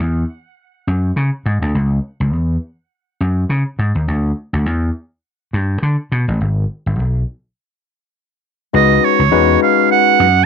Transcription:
0.00 slap bass E2
0.87 slap bass F#2
1.16 slap bass C#3
1.46 slap bass G#2
1.62 slap bass D2
1.75 slap bass C#2
2.20 slap bass C#2
2.33 slap bass E2
3.20 slap bass F#2
3.49 slap bass C#3
3.79 slap bass G#2
3.95 slap bass D#2
4.08 slap bass D2
4.53 slap bass D2
4.66 slap bass E2
5.53 slap bass G2
5.83 slap bass D3
6.12 slap bass B2
6.28 slap bass A1
6.41 slap bass G#1
6.86 slap bass G#1
6.99 slap bass B1
8.73 slap bass C#2, tine electric piano G#3 C#4 D#4 F#4 B4, oboe D#5
9.04 oboe C#5
9.19 slap bass C#2
9.31 slap bass E2, tine electric piano G#3 C#4 D#4 F#4 B4
9.63 oboe F5
9.92 oboe F#5
10.20 slap bass F#2

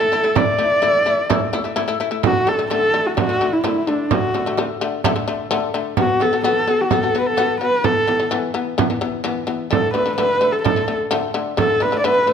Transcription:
Already playing: horsehead fiddle A4
0.01 shamisen E4
0.12 shamisen A3 E4, frame drum
0.24 shamisen A3 E4
0.35 shamisen A3 E4, horsehead fiddle D5, frame drum
0.58 shamisen A3 E4, frame drum
0.82 shamisen A3 E4, frame drum
1.06 shamisen A3 E4, frame drum
1.30 shamisen A3 E4, frame drum
1.53 shamisen A3 E4, frame drum
1.64 shamisen A3 E4
1.76 shamisen A3 E4, frame drum
1.88 shamisen A3 E4
2.00 shamisen A3 E4, frame drum
2.11 shamisen A3 E4
2.23 shamisen D3 A3, horsehead fiddle F#4, frame drum
2.47 shamisen D3 A3, horsehead fiddle A4, frame drum
2.59 shamisen D3 A3
2.70 shamisen D3 A3, horsehead fiddle A4, frame drum
2.94 shamisen D3 A3, frame drum
3.06 horsehead fiddle F#4
3.17 shamisen D3 A3, horsehead fiddle F#4, frame drum
3.29 shamisen D3 A3
3.40 shamisen D3 A3, frame drum
3.52 horsehead fiddle E4
3.64 shamisen D3 A3, frame drum
3.87 shamisen D3 A3, horsehead fiddle D4, frame drum
4.11 shamisen D3 A3, horsehead fiddle F#4, frame drum
4.34 shamisen D3 A3, frame drum
4.46 shamisen D3 A3
4.58 shamisen D3 A3, frame drum
4.81 shamisen D3 A3, frame drum
5.04 shamisen D3 A3, frame drum
5.16 shamisen D3 A3
5.28 shamisen D3 A3, frame drum
5.51 shamisen D3 A3, frame drum
5.74 shamisen D3 A3, frame drum
5.97 shamisen B3 F#4, horsehead fiddle F#4, frame drum
6.20 shamisen B3 F#4, horsehead fiddle A4, frame drum
6.33 shamisen B3 F#4
6.44 shamisen B3 F#4, horsehead fiddle A4, frame drum
6.67 shamisen B3 F#4, frame drum
6.81 horsehead fiddle F#4
6.91 shamisen B3 F#4, horsehead fiddle A4, frame drum
7.03 shamisen B3 F#4
7.15 shamisen B3 F#4, frame drum
7.19 horsehead fiddle B4
7.26 horsehead fiddle A4
7.37 shamisen B3 F#4, frame drum
7.61 shamisen B3 F#4, horsehead fiddle B4
7.84 shamisen E3 B3, horsehead fiddle A4, frame drum
8.08 shamisen E3 B3, frame drum
8.20 shamisen E3 B3
8.31 shamisen E3 B3, frame drum
8.54 shamisen E3 B3, frame drum
8.78 shamisen E3 B3, frame drum
8.90 shamisen E3 B3
9.01 shamisen E3 B3, frame drum
9.24 shamisen E3 B3, frame drum
9.47 shamisen E3 B3, frame drum
9.71 shamisen D3 A3, horsehead fiddle A4, frame drum
9.94 shamisen D3 A3, horsehead fiddle B4, frame drum
10.06 shamisen D3 A3
10.17 shamisen D3 A3, horsehead fiddle B4, frame drum
10.41 shamisen D3 A3, frame drum
10.52 horsehead fiddle A4
10.62 shamisen D3 A3, horsehead fiddle A4, frame drum
10.76 shamisen D3 A3
10.88 shamisen D3 A3, frame drum
11.11 shamisen D3 A3, frame drum
11.34 shamisen D3 A3, frame drum
11.57 shamisen D3 A3, horsehead fiddle A4, frame drum
11.80 shamisen D3 A3, horsehead fiddle B4, frame drum
11.92 shamisen D3 A3
11.98 horsehead fiddle D5
12.04 shamisen D3 A3, horsehead fiddle B4, frame drum
12.27 shamisen D3 A3, frame drum

